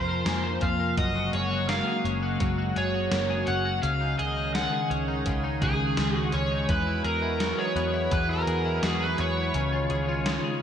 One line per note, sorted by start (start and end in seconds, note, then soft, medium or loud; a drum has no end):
0.00 0.22 F2 medium
0.00 0.94 C3 medium
0.00 0.94 F3 medium
0.00 0.97 F3 medium
0.00 0.25 A#3 medium
0.00 3.79 A#3 medium
0.00 0.60 F4 medium
0.00 0.94 F4 medium
0.00 0.42 C5 medium
0.00 0.64 C5 medium
0.00 1.25 F5 medium
0.00 0.26 G#5 medium
0.00 1.66 A#5 soft
0.00 0.54 C6 medium
0.08 0.79 A#4 medium
0.26 0.57 F2 medium
0.26 1.36 A#3 medium
0.26 1.30 G#5 medium
0.26 snare loud
0.26 closed hi-hat medium
0.44 1.04 C5 medium
0.61 0.93 F2 medium
0.61 1.05 F4 medium
0.61 0.98 F5 medium
0.61 kick medium
0.61 closed hi-hat soft
0.80 1.15 A#4 medium
0.97 1.29 F#1 medium
0.97 3.81 C#3 medium
0.97 2.39 F#3 medium
0.97 3.81 G#3 medium
0.97 3.81 F#4 medium
0.97 1.34 D#5 loud
0.97 kick medium
0.97 closed hi-hat medium
1.15 1.50 F#4 medium
1.33 1.80 F#1 medium
1.33 1.87 G#4 soft
1.33 1.69 C#5 medium
1.33 closed hi-hat soft
1.51 2.21 F#4 medium
1.69 3.11 A#3 medium
1.69 2.02 F5 medium
1.69 snare loud
1.69 closed hi-hat medium
1.87 2.76 G#4 medium
2.05 2.36 F#1 medium
2.05 3.47 C#4 medium
2.05 closed hi-hat soft
2.23 2.57 F#4 soft
2.40 2.72 F#1 medium
2.40 3.82 F#3 medium
2.40 kick medium
2.40 closed hi-hat medium
2.58 2.93 F#4 medium
2.76 3.08 F#1 medium
2.76 3.30 G#4 medium
2.76 3.50 C#5 medium
2.76 closed hi-hat soft
2.94 3.64 F#4 soft
3.12 3.43 F#1 medium
3.12 3.90 A#3 medium
3.12 snare loud
3.12 closed hi-hat medium
3.30 4.18 G#4 medium
3.47 3.79 F#1 medium
3.47 4.04 C#4 medium
3.47 3.82 F#5 medium
3.47 closed hi-hat soft
3.65 3.90 F#4 medium
3.82 4.15 C#2 loud
3.82 5.25 C#3 medium
3.82 6.66 D#3 medium
3.82 9.51 G#3 medium
3.82 6.66 C#4 medium
3.82 6.66 G#4 medium
3.82 4.18 F5 loud
3.82 closed hi-hat medium
4.01 4.35 D#4 soft
4.19 4.66 C#2 medium
4.19 4.72 G#4 medium
4.19 4.52 D#5 medium
4.19 closed hi-hat soft
4.37 5.07 D#4 soft
4.54 5.97 G#3 medium
4.54 4.88 F#5 medium
4.54 snare loud
4.54 closed hi-hat medium
4.72 5.61 G#4 medium
4.90 5.22 C#2 medium
4.90 6.32 C#4 medium
4.90 closed hi-hat soft
5.08 5.43 D#4 soft
5.26 5.58 C#2 medium
5.26 6.69 C#3 medium
5.26 kick medium
5.26 closed hi-hat medium
5.44 5.78 D#4 medium
5.62 5.93 C#2 medium
5.62 6.15 G#4 medium
5.62 6.17 G#4 medium
5.62 kick medium
5.62 closed hi-hat soft
5.79 6.50 D#4 soft
5.97 6.29 C#2 medium
5.97 7.40 G#3 medium
5.97 snare loud
5.97 closed hi-hat medium
6.15 6.36 F#4 medium
6.15 7.04 G#4 medium
6.32 6.65 C#2 loud
6.32 6.76 C#4 medium
6.32 6.70 C#5 medium
6.32 closed hi-hat soft
6.51 6.76 D#4 medium
6.68 7.00 E2 medium
6.68 9.51 E3 medium
6.68 8.10 E3 medium
6.68 9.51 B3 medium
6.68 9.51 F#4 medium
6.68 7.05 B4 medium
6.68 kick medium
6.68 closed hi-hat medium
6.87 7.21 E4 medium
7.04 7.52 E2 medium
7.04 7.58 G#4 medium
7.04 7.60 A#4 loud
7.04 closed hi-hat soft
7.22 7.92 E4 medium
7.40 8.82 F#3 medium
7.40 snare medium
7.40 closed hi-hat medium
7.58 8.47 G#4 medium
7.58 8.14 C#5 medium
7.76 8.07 E2 medium
7.76 9.18 B3 medium
7.76 closed hi-hat soft
7.94 8.28 E4 medium
8.11 8.43 E2 loud
8.11 9.54 E3 medium
8.11 8.29 B4 medium
8.11 kick medium
8.11 closed hi-hat medium
8.29 8.64 E4 medium
8.29 8.80 A#4 medium
8.47 8.79 E2 medium
8.47 9.00 G#4 medium
8.47 closed hi-hat soft
8.65 9.35 E4 medium
8.83 9.14 E2 medium
8.83 9.62 F#3 medium
8.83 9.02 G#4 medium
8.83 snare medium
8.83 closed hi-hat medium
9.01 9.90 G#4 medium
9.01 9.20 B4 medium
9.18 9.50 E2 medium
9.18 9.62 B3 medium
9.18 10.62 C#5 medium
9.18 closed hi-hat soft
9.37 9.62 E4 medium
9.54 9.86 C#2 loud
9.54 10.62 C#3 medium
9.54 10.62 D#3 medium
9.54 10.62 G#3 medium
9.54 10.62 C#4 medium
9.54 10.62 F4 medium
9.54 closed hi-hat medium
9.72 10.08 F4 medium
9.90 10.37 C#2 medium
9.90 10.44 G#4 medium
9.90 closed hi-hat soft
10.08 10.62 F4 medium
10.26 10.62 G#3 medium
10.26 snare loud
10.26 closed hi-hat medium
10.44 10.62 G#4 medium